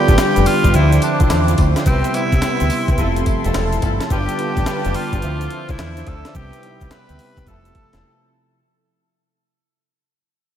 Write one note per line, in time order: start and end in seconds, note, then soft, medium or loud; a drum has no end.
0.00 0.74 D3 medium
0.00 0.76 G3 medium
0.00 0.76 B3 medium
0.00 0.76 F4 medium
0.00 0.49 G4 loud
0.00 0.73 G4 medium
0.00 0.73 D5 medium
0.00 1.84 G5 medium
0.00 0.73 B5 medium
0.08 0.16 A1 medium
0.08 0.17 D4 medium
0.08 0.17 F4 medium
0.08 0.17 G4 medium
0.08 0.17 B4 medium
0.08 kick medium
0.08 closed hi-hat medium
0.08 shaker medium
0.18 0.37 D4 medium
0.18 0.37 F4 medium
0.18 0.37 G4 medium
0.18 0.37 B4 medium
0.18 muted fingered electric bass stroke soft
0.18 snare loud
0.18 clap medium
0.18 closed hi-hat medium
0.18 tambourine medium
0.18 shaker medium
0.36 0.45 F1 medium
0.36 closed hi-hat medium
0.36 shaker medium
0.46 0.76 F4 loud
0.46 open hi-hat medium
0.46 tambourine medium
0.46 shaker medium
0.64 0.72 G1 medium
0.64 0.73 D4 medium
0.64 0.73 F4 medium
0.64 0.76 G4 medium
0.64 0.76 B4 medium
0.64 kick medium
0.64 closed hi-hat medium
0.64 shaker medium
0.74 0.98 D2 loud
0.74 1.66 D3 medium
0.74 1.66 F3 medium
0.74 1.66 C4 medium
0.74 0.93 D4 medium
0.74 0.93 E4 medium
0.74 1.02 E4 loud
0.74 1.66 E4 medium
0.74 0.93 F4 medium
0.74 1.85 C5 medium
0.74 0.93 C5 medium
0.74 4.07 E5 medium
0.74 1.85 D6 medium
0.74 closed hi-hat medium
0.74 shaker medium
0.92 closed hi-hat medium
0.92 shaker medium
1.02 1.55 D4 medium
1.02 closed hi-hat medium
1.02 tambourine medium
1.20 1.29 C2 medium
1.20 1.32 D4 medium
1.20 1.32 E4 medium
1.20 1.32 F4 medium
1.20 1.32 C5 medium
1.20 kick loud
1.20 closed hi-hat medium
1.20 shaker soft
1.30 1.54 E2 loud
1.30 snare loud
1.30 clap loud
1.30 closed hi-hat medium
1.30 tambourine medium
1.30 shaker medium
1.48 1.60 D4 medium
1.48 1.60 E4 medium
1.48 1.60 F4 medium
1.48 1.60 C5 medium
1.48 closed hi-hat medium
1.48 shaker medium
1.58 1.73 D2 medium
1.58 kick loud
1.58 closed hi-hat medium
1.58 tambourine medium
1.76 1.88 D4 medium
1.76 1.85 E4 medium
1.76 1.88 F4 medium
1.76 1.88 C5 medium
1.76 snare medium
1.76 closed hi-hat medium
1.76 shaker soft
1.86 2.01 C2 loud
1.86 2.08 C3 medium
1.86 2.08 G3 medium
1.86 2.97 B3 medium
1.86 2.08 B3 medium
1.86 2.05 C4 loud
1.86 2.16 C4 loud
1.86 2.05 E4 medium
1.86 2.08 E4 medium
1.86 2.05 G4 medium
1.86 2.05 B4 loud
1.86 2.97 G5 medium
1.86 4.08 C6 medium
1.86 kick loud
1.86 closed hi-hat medium
1.86 tambourine medium
1.86 shaker medium
2.04 closed hi-hat medium
2.04 shaker medium
2.14 2.93 C3 medium
2.14 2.93 G3 medium
2.14 2.93 B3 medium
2.14 3.27 E4 loud
2.14 2.93 E4 medium
2.14 closed hi-hat medium
2.14 tambourine medium
2.32 2.41 C2 loud
2.32 2.41 C4 medium
2.32 2.41 E4 medium
2.32 2.41 G4 medium
2.32 2.41 B4 medium
2.32 kick medium
2.32 closed hi-hat medium
2.32 shaker medium
2.42 2.61 C4 medium
2.42 2.61 E4 medium
2.42 2.61 G4 medium
2.42 2.62 B4 medium
2.42 snare loud
2.42 clap medium
2.42 closed hi-hat medium
2.42 tambourine medium
2.42 shaker medium
2.60 2.69 D2 medium
2.60 closed hi-hat soft
2.60 shaker medium
2.70 open hi-hat medium
2.70 tambourine medium
2.70 shaker soft
2.88 2.97 C2 loud
2.88 2.97 C4 medium
2.88 2.97 E4 medium
2.88 3.00 G4 medium
2.88 3.00 B4 medium
2.88 kick loud
2.88 closed hi-hat medium
2.88 shaker soft
2.98 3.22 F1 loud
2.98 3.90 C3 medium
2.98 3.90 F3 medium
2.98 3.90 A3 medium
2.98 3.17 C4 medium
2.98 3.18 E4 medium
2.98 3.90 E4 loud
2.98 3.18 F4 medium
2.98 4.09 A4 medium
2.98 3.18 A4 medium
2.98 6.32 A5 medium
2.98 kick medium
2.98 closed hi-hat medium
2.98 shaker medium
3.16 closed hi-hat medium
3.16 shaker medium
3.26 kick loud
3.26 closed hi-hat medium
3.26 tambourine medium
3.44 3.53 E1 medium
3.44 3.56 C4 medium
3.44 3.56 E4 medium
3.44 3.56 F4 medium
3.44 3.56 A4 medium
3.44 closed hi-hat soft
3.44 shaker soft
3.54 3.78 E1 medium
3.54 snare loud
3.54 clap medium
3.54 closed hi-hat medium
3.54 tambourine medium
3.54 shaker medium
3.73 closed hi-hat medium
3.73 shaker soft
3.82 3.98 G1 loud
3.82 4.02 C4 medium
3.82 4.02 E4 medium
3.82 4.02 F4 medium
3.82 4.02 A4 medium
3.82 kick medium
3.82 closed hi-hat medium
3.82 tambourine medium
4.01 snare medium
4.01 closed hi-hat medium
4.01 shaker soft
4.10 4.26 G1 loud
4.10 4.32 D3 medium
4.10 4.32 G3 medium
4.10 4.33 B3 medium
4.10 4.30 D4 medium
4.10 4.30 F4 medium
4.10 4.33 F4 medium
4.10 4.30 G4 medium
4.10 4.97 G4 loud
4.10 5.22 B4 medium
4.10 4.30 B4 loud
4.10 5.22 G5 medium
4.10 6.33 D6 medium
4.10 kick loud
4.10 closed hi-hat medium
4.10 shaker medium
4.29 closed hi-hat medium
4.29 shaker medium
4.39 5.17 D3 medium
4.39 5.17 G3 medium
4.39 5.17 B3 medium
4.39 5.18 F4 medium
4.39 closed hi-hat medium
4.57 4.65 A1 medium
4.57 4.65 D4 medium
4.57 4.65 F4 medium
4.57 4.66 G4 medium
4.57 4.66 B4 medium
4.57 kick medium
4.57 closed hi-hat medium
4.57 shaker medium
4.66 4.86 D4 medium
4.66 4.86 F4 medium
4.66 4.86 G4 medium
4.66 4.86 B4 loud
4.66 muted fingered electric bass stroke soft
4.66 snare loud
4.66 clap medium
4.66 closed hi-hat medium
4.66 shaker medium
4.85 4.93 F1 medium
4.85 closed hi-hat medium
4.85 shaker soft
4.94 5.72 F4 loud
4.94 open hi-hat medium
4.94 shaker medium
5.13 5.21 G1 loud
5.13 5.21 D4 medium
5.13 5.22 F4 medium
5.13 5.24 G4 medium
5.13 5.25 B4 medium
5.13 kick loud
5.13 closed hi-hat medium
5.13 shaker medium
5.22 5.46 D2 loud
5.22 6.14 D3 medium
5.22 6.14 F3 medium
5.22 6.14 C4 medium
5.22 5.42 D4 medium
5.22 5.42 E4 medium
5.22 5.42 F4 medium
5.22 5.42 C5 medium
5.22 6.34 C5 medium
5.22 8.56 E5 medium
5.22 6.15 E5 medium
5.22 closed hi-hat medium
5.22 shaker medium
5.41 closed hi-hat medium
5.41 shaker medium
5.50 closed hi-hat medium
5.69 5.77 C2 medium
5.69 5.80 D4 medium
5.69 5.80 E4 medium
5.69 6.09 E4 loud
5.69 5.81 F4 medium
5.69 5.81 C5 medium
5.69 kick loud
5.69 closed hi-hat soft
5.69 shaker soft
5.79 6.02 E2 medium
5.79 snare loud
5.79 clap loud
5.79 closed hi-hat medium
5.79 shaker medium
5.97 6.08 D4 medium
5.97 6.08 E4 medium
5.97 6.09 F4 medium
5.97 6.09 C5 medium
5.97 closed hi-hat medium
5.97 shaker soft
6.07 6.22 D2 medium
6.07 6.35 A4 medium
6.07 kick loud
6.07 closed hi-hat medium
6.25 6.36 D4 medium
6.25 6.33 E4 medium
6.25 6.37 F4 medium
6.25 6.37 C5 medium
6.25 snare medium
6.25 closed hi-hat soft
6.25 shaker soft
6.34 6.50 C2 loud
6.34 6.57 C3 medium
6.34 6.57 G3 medium
6.34 7.46 B3 medium
6.34 6.57 B3 medium
6.34 6.54 C4 loud
6.34 6.54 E4 medium
6.34 6.57 E4 medium
6.34 6.54 G4 medium
6.34 6.93 G4 loud
6.34 6.54 B4 loud
6.34 7.46 G5 medium
6.34 kick loud
6.34 closed hi-hat medium
6.34 shaker medium
6.53 closed hi-hat medium
6.53 shaker soft
6.63 7.42 C3 medium
6.63 7.42 G3 medium
6.63 7.42 B3 medium
6.63 6.72 D#4 medium
6.63 closed hi-hat medium
6.71 7.45 E4 medium
6.81 6.89 C2 medium
6.81 6.89 C4 medium
6.81 6.89 E4 medium
6.81 6.90 G4 medium
6.81 6.90 B4 medium
6.81 kick medium
6.81 closed hi-hat soft
6.81 shaker medium
6.90 7.10 C4 medium
6.90 7.10 E4 medium
6.90 7.10 G4 medium
6.90 7.10 B4 medium
6.90 7.49 B4 loud
6.90 muted fingered electric bass stroke soft
6.90 snare loud
6.90 clap medium
6.90 closed hi-hat medium
6.90 shaker medium
7.09 7.17 D2 medium
7.09 closed hi-hat soft
7.09 shaker soft
7.19 open hi-hat medium
7.19 shaker medium
7.37 7.45 C2 loud
7.37 7.45 C4 medium
7.37 7.45 E4 medium
7.37 7.49 G4 medium
7.37 7.49 B4 medium
7.37 kick loud
7.37 closed hi-hat medium
7.37 shaker medium
7.46 7.70 F1 loud
7.46 8.38 C3 medium
7.46 8.38 F3 medium
7.46 8.39 A3 medium
7.46 7.66 C4 medium
7.46 7.66 E4 medium
7.46 8.39 E4 medium
7.46 7.66 F4 medium
7.46 7.66 A4 medium
7.46 8.58 A4 medium
7.46 8.32 A4 loud
7.46 8.58 A5 medium
7.46 kick medium
7.46 closed hi-hat medium
7.46 shaker medium
7.65 closed hi-hat medium
7.65 shaker medium
7.75 kick medium
7.75 closed hi-hat medium
7.93 8.02 E1 medium
7.93 8.03 C4 medium
7.93 8.03 E4 medium
7.93 8.03 F4 medium
7.93 8.03 A4 medium
7.93 snare medium
7.93 closed hi-hat medium
7.93 shaker soft